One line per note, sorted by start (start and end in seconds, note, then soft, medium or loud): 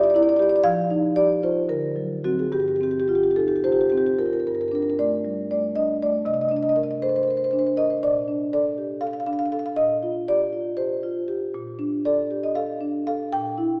0.00 0.61 A#2 loud
0.00 0.30 G4 medium
0.00 0.10 D5 medium
0.10 0.16 D5 medium
0.15 0.55 E4 medium
0.15 0.23 D5 medium
0.23 0.29 D5 medium
0.29 0.36 D5 medium
0.36 0.65 G4 medium
0.36 0.42 D5 medium
0.42 0.49 D5 medium
0.49 0.56 D5 medium
0.56 0.62 D5 medium
0.64 1.65 F3 medium
0.64 1.14 F5 loud
0.91 1.32 D#4 medium
1.16 1.58 G4 medium
1.16 1.41 D5 loud
1.43 1.69 F4 medium
1.43 1.68 C5 medium
1.69 2.49 D3 medium
1.69 2.21 A#4 medium
1.96 2.23 F#3 medium
2.24 2.49 F#3 medium
2.24 2.49 C4 medium
2.24 2.38 F#4 medium
2.39 2.52 G#4 medium
2.52 4.42 G2 medium
2.52 2.60 G4 medium
2.60 2.68 G4 medium
2.68 2.76 G4 medium
2.76 2.83 G4 medium
2.81 3.25 C4 medium
2.81 2.91 G4 medium
2.91 3.00 G4 medium
3.00 3.08 G4 medium
3.08 3.53 F4 medium
3.08 3.15 G4 medium
3.15 3.23 G4 medium
3.23 3.31 G4 medium
3.31 3.39 G4 medium
3.36 3.64 D#4 soft
3.36 3.48 G4 medium
3.36 3.63 A4 medium
3.48 3.56 G4 medium
3.56 3.64 G4 medium
3.64 4.08 F4 medium
3.64 3.72 G4 medium
3.64 4.17 C5 medium
3.72 3.81 G4 medium
3.81 3.90 G4 medium
3.90 4.35 C4 medium
3.90 3.97 G4 medium
3.97 4.06 G4 medium
4.06 4.15 G4 medium
4.19 4.46 F4 medium
4.19 4.26 A#4 medium
4.26 4.33 A#4 medium
4.33 4.40 A#4 medium
4.40 4.47 A#4 medium
4.47 6.22 G2 medium
4.47 4.55 A#4 medium
4.55 4.61 A#4 medium
4.61 4.68 A#4 medium
4.68 5.13 D4 medium
4.68 4.75 A#4 medium
4.75 4.82 A#4 medium
4.82 4.90 A#4 medium
4.90 4.94 A#4 medium
4.99 5.40 A3 medium
4.99 5.48 D5 medium
5.25 5.50 G3 soft
5.51 5.91 A3 soft
5.51 5.75 D5 medium
5.76 6.16 D4 soft
5.76 6.00 D#5 medium
6.02 6.27 A3 medium
6.02 6.26 D5 medium
6.25 7.97 C3 medium
6.25 6.34 D#5 medium
6.34 6.41 D#5 medium
6.41 6.49 D#5 medium
6.49 6.92 D4 medium
6.49 6.56 D#5 medium
6.56 6.63 D#5 medium
6.63 6.69 D#5 medium
6.69 6.76 D#5 medium
6.76 7.17 A#4 medium
6.76 6.83 D#5 medium
6.83 6.91 D#5 medium
6.91 6.99 D#5 medium
7.02 7.27 A4 soft
7.02 7.09 C5 medium
7.09 7.16 C5 medium
7.16 7.23 C5 medium
7.23 7.30 C5 medium
7.28 7.67 A#4 soft
7.28 7.37 C5 medium
7.37 7.44 C5 medium
7.44 7.51 C5 medium
7.51 7.92 D4 medium
7.51 7.59 C5 medium
7.59 7.67 C5 medium
7.67 7.74 C5 medium
7.77 8.01 A#4 medium
7.77 7.89 D#5 medium
7.90 8.02 C5 medium
8.03 9.74 A#2 medium
8.03 8.50 D5 medium
8.28 8.67 D4 medium
8.53 8.93 A4 medium
8.53 9.01 D5 medium
8.78 9.02 G4 soft
9.01 9.41 A4 soft
9.01 9.07 F5 medium
9.07 9.13 F5 medium
9.13 9.20 F5 medium
9.20 9.26 F5 medium
9.26 9.67 D4 soft
9.26 9.33 F5 medium
9.33 9.39 F5 medium
9.39 9.46 F5 medium
9.46 9.52 F5 medium
9.52 9.77 A4 medium
9.52 9.59 F5 medium
9.59 9.66 F5 medium
9.66 9.74 F5 medium
9.76 11.49 A#2 medium
9.76 10.25 D#5 loud
10.03 10.43 F4 medium
10.28 10.68 G4 medium
10.28 10.76 D5 medium
10.53 10.78 F4 soft
10.77 11.18 G4 medium
10.77 11.01 C5 medium
11.03 11.44 F4 medium
11.28 11.54 G4 medium
11.54 13.27 A#2 medium
11.79 12.19 D4 medium
12.05 12.45 A4 medium
12.05 12.40 D5 medium
12.31 12.55 G4 medium
12.43 12.55 D#5 medium
12.55 12.96 A4 medium
12.55 13.04 F5 medium
12.81 13.21 D4 medium
13.07 13.32 A4 medium
13.07 13.31 F5 medium
13.32 13.80 A#2 medium
13.32 13.80 G5 loud
13.58 13.80 E4 medium